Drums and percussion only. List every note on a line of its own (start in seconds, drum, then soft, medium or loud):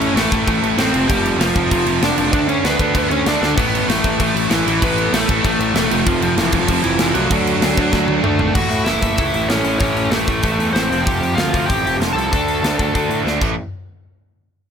0.01 crash medium
0.17 snare loud
0.17 crash medium
0.32 kick medium
0.32 crash medium
0.48 kick loud
0.48 crash medium
0.63 crash medium
0.78 snare loud
0.78 crash medium
0.94 crash medium
1.10 kick loud
1.10 crash medium
1.26 crash medium
1.41 snare loud
1.41 crash loud
1.56 kick medium
1.56 crash medium
1.71 kick loud
1.71 crash loud
1.86 crash medium
2.02 snare loud
2.02 crash medium
2.18 crash medium
2.33 kick loud
2.33 crash medium
2.49 crash medium
2.65 snare loud
2.65 crash medium
2.79 kick loud
2.79 crash medium
2.95 kick loud
2.95 crash medium
3.11 crash medium
3.26 snare loud
3.26 crash medium
3.43 snare medium
3.58 kick loud
3.58 splash medium
3.58 crash medium
3.75 crash medium
3.90 snare loud
3.90 crash medium
4.04 kick medium
4.04 crash medium
4.20 kick loud
4.20 crash medium
4.37 crash medium
4.51 snare loud
4.51 crash medium
4.68 crash medium
4.82 kick loud
4.82 crash medium
4.98 crash medium
5.14 snare loud
5.14 crash medium
5.29 kick medium
5.29 crash medium
5.45 kick loud
5.45 crash medium
5.60 crash medium
5.75 snare loud
5.75 crash medium
5.91 crash medium
6.06 kick loud
6.06 crash medium
6.22 crash medium
6.38 snare loud
6.38 crash medium
6.52 kick loud
6.52 crash medium
6.68 kick loud
6.68 crash loud
6.84 crash medium
6.99 snare loud
6.99 crash medium
7.15 crash medium
7.31 kick loud
7.31 crash medium
7.47 crash medium
7.62 snare loud
7.62 crash loud
7.77 kick loud
7.77 crash medium
7.93 kick medium
7.93 snare medium
8.08 high tom medium
8.24 mid tom loud
8.39 floor tom loud
8.55 kick loud
8.55 crash loud
8.71 open hi-hat medium
8.86 snare loud
8.86 open hi-hat medium
9.02 kick medium
9.02 open hi-hat medium
9.18 kick loud
9.18 open hi-hat medium
9.34 open hi-hat medium
9.50 snare loud
9.50 open hi-hat medium
9.64 open hi-hat medium
9.80 kick loud
9.80 open hi-hat medium
9.97 open hi-hat medium
10.12 snare loud
10.12 open hi-hat medium
10.27 kick medium
10.27 open hi-hat medium
10.43 kick medium
10.43 open hi-hat medium
10.60 open hi-hat medium
10.76 snare loud
10.76 open hi-hat medium
10.92 open hi-hat medium
11.07 kick loud
11.07 open hi-hat medium
11.23 open hi-hat medium
11.38 snare loud
11.38 open hi-hat medium
11.54 kick medium
11.54 open hi-hat medium
11.70 kick medium
11.70 open hi-hat medium
11.87 open hi-hat medium
12.02 snare loud
12.02 open hi-hat medium
12.18 open hi-hat medium
12.33 kick loud
12.33 open hi-hat medium
12.48 open hi-hat medium
12.64 snare loud
12.64 open hi-hat medium
12.79 kick medium
12.79 open hi-hat soft
12.95 kick medium
12.95 open hi-hat medium
13.11 open hi-hat soft
13.27 snare medium
13.41 kick loud
13.41 crash medium